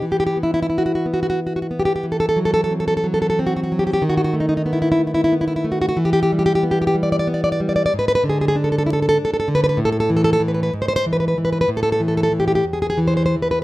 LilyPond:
\new Staff \with { instrumentName = "Nylon-string guitar" } { \time 6/8 \key e \minor \tempo 4. = 62 << { r32 g'32 g'32 g'32 r32 e'32 e'32 e'32 r32 fis'32 fis'32 fis'32 r32 fis'32 fis'32 fis'32 r32 fis'32 fis'32 fis'32 r32 g'32 g'32 g'32 | r32 a'32 a'32 a'32 r32 a'32 a'32 a'32 r32 a'32 a'32 a'32 r32 a'32 a'32 a'32 r32 fis'32 fis'32 fis'32 r32 g'32 g'32 g'32 | r32 fis'32 fis'32 fis'32 r32 dis'32 dis'32 dis'32 r32 e'32 e'32 e'32 r32 e'32 e'32 e'32 r32 e'32 e'32 e'32 r32 fis'32 fis'32 fis'32 | r32 g'32 g'32 g'32 r32 g'32 g'32 g'32 r32 g'32 g'32 g'32 r32 d''32 d''32 d''32 r32 d''32 d''32 d''32 r32 d''32 d''32 d''32 |
\key a \minor r32 b'32 b'32 b'32 r32 gis'32 gis'32 gis'32 r32 a'32 a'32 a'32 r32 a'32 a'32 a'32 r32 a'32 a'32 a'32 r32 b'32 b'32 b'32 | r32 a'32 a'32 a'32 r32 a'32 a'32 a'32 r32 b'32 b'32 b'32 r32 c''32 c''32 c''32 r32 b'32 b'32 b'32 r32 b'32 b'32 b'32 | r32 a'32 a'32 a'32 r32 a'32 a'32 a'32 r32 g'32 g'32 g'32 r32 gis'32 gis'32 gis'32 r32 c''32 c''32 c''32 r32 b'32 b'32 r32 | } \\ { e8 b8 e'8 b4 b8 | e8 fis8 c'8 fis8 c'8 fis8 | dis8 a8 b8 a8 b8 a8 | e8 g8 b8 g8 b8 g8 |
gis,8 d8 d'8 e'8 d'8 d8 | a,8 e4 gis,8 e8 e8 | a,8 e8 e8 e,8 e8 e8 | } >> }